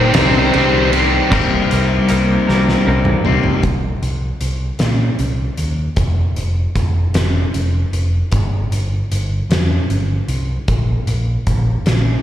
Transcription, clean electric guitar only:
0, 0, Header, 1, 2, 480
1, 0, Start_track
1, 0, Key_signature, -3, "minor"
1, 0, Tempo, 776197
1, 810, Time_signature, 6, 3, 24, 8
1, 3214, Tempo, 783290
1, 7519, End_track
2, 0, Start_track
2, 0, Title_t, "Clean electric guitar"
2, 0, Program_c, 0, 27
2, 806, Note_on_c, 0, 48, 84
2, 810, Note_on_c, 0, 55, 96
2, 817, Note_on_c, 0, 58, 95
2, 820, Note_on_c, 0, 63, 96
2, 822, Note_on_c, 0, 70, 98
2, 1041, Note_off_c, 0, 70, 0
2, 1048, Note_off_c, 0, 63, 0
2, 1048, Note_on_c, 0, 70, 74
2, 1056, Note_on_c, 0, 63, 64
2, 1059, Note_off_c, 0, 58, 0
2, 1066, Note_on_c, 0, 58, 56
2, 1280, Note_off_c, 0, 55, 0
2, 1286, Note_off_c, 0, 58, 0
2, 1287, Note_off_c, 0, 48, 0
2, 1287, Note_on_c, 0, 55, 78
2, 1292, Note_off_c, 0, 63, 0
2, 1293, Note_on_c, 0, 58, 77
2, 1296, Note_off_c, 0, 70, 0
2, 1299, Note_on_c, 0, 63, 77
2, 1304, Note_on_c, 0, 70, 76
2, 1523, Note_off_c, 0, 70, 0
2, 1528, Note_off_c, 0, 63, 0
2, 1530, Note_on_c, 0, 70, 78
2, 1532, Note_off_c, 0, 58, 0
2, 1534, Note_off_c, 0, 55, 0
2, 1536, Note_on_c, 0, 63, 74
2, 1539, Note_on_c, 0, 58, 67
2, 1541, Note_on_c, 0, 55, 72
2, 1545, Note_on_c, 0, 48, 65
2, 1761, Note_off_c, 0, 55, 0
2, 1767, Note_off_c, 0, 58, 0
2, 1768, Note_on_c, 0, 55, 72
2, 1772, Note_off_c, 0, 63, 0
2, 1774, Note_on_c, 0, 58, 72
2, 1775, Note_off_c, 0, 70, 0
2, 1780, Note_on_c, 0, 63, 74
2, 1782, Note_on_c, 0, 70, 84
2, 2017, Note_off_c, 0, 48, 0
2, 2235, Note_off_c, 0, 55, 0
2, 2238, Note_off_c, 0, 58, 0
2, 2240, Note_off_c, 0, 63, 0
2, 2242, Note_off_c, 0, 70, 0
2, 7519, End_track
0, 0, End_of_file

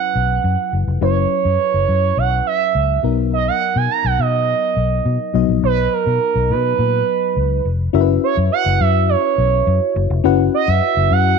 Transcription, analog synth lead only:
0, 0, Header, 1, 2, 480
1, 0, Start_track
1, 0, Tempo, 576923
1, 846, Time_signature, 4, 2, 24, 8
1, 9476, End_track
2, 0, Start_track
2, 0, Title_t, "Analog synth lead"
2, 0, Program_c, 0, 81
2, 0, Note_on_c, 0, 78, 121
2, 609, Note_off_c, 0, 78, 0
2, 849, Note_on_c, 0, 73, 91
2, 1813, Note_on_c, 0, 78, 109
2, 1825, Note_off_c, 0, 73, 0
2, 2050, Note_off_c, 0, 78, 0
2, 2053, Note_on_c, 0, 76, 93
2, 2496, Note_off_c, 0, 76, 0
2, 2773, Note_on_c, 0, 75, 86
2, 2882, Note_off_c, 0, 75, 0
2, 2893, Note_on_c, 0, 78, 84
2, 3134, Note_on_c, 0, 80, 90
2, 3147, Note_off_c, 0, 78, 0
2, 3252, Note_on_c, 0, 82, 97
2, 3264, Note_off_c, 0, 80, 0
2, 3373, Note_on_c, 0, 78, 93
2, 3385, Note_off_c, 0, 82, 0
2, 3494, Note_on_c, 0, 75, 102
2, 3507, Note_off_c, 0, 78, 0
2, 4450, Note_off_c, 0, 75, 0
2, 4692, Note_on_c, 0, 71, 105
2, 4932, Note_on_c, 0, 70, 100
2, 4945, Note_off_c, 0, 71, 0
2, 5417, Note_on_c, 0, 71, 103
2, 5429, Note_off_c, 0, 70, 0
2, 6371, Note_off_c, 0, 71, 0
2, 6853, Note_on_c, 0, 73, 91
2, 6960, Note_off_c, 0, 73, 0
2, 7087, Note_on_c, 0, 78, 110
2, 7324, Note_on_c, 0, 76, 101
2, 7336, Note_off_c, 0, 78, 0
2, 7564, Note_on_c, 0, 73, 86
2, 7577, Note_off_c, 0, 76, 0
2, 8285, Note_off_c, 0, 73, 0
2, 8771, Note_on_c, 0, 75, 100
2, 8889, Note_on_c, 0, 76, 115
2, 8902, Note_off_c, 0, 75, 0
2, 9253, Note_on_c, 0, 78, 118
2, 9266, Note_off_c, 0, 76, 0
2, 9476, Note_off_c, 0, 78, 0
2, 9476, End_track
0, 0, End_of_file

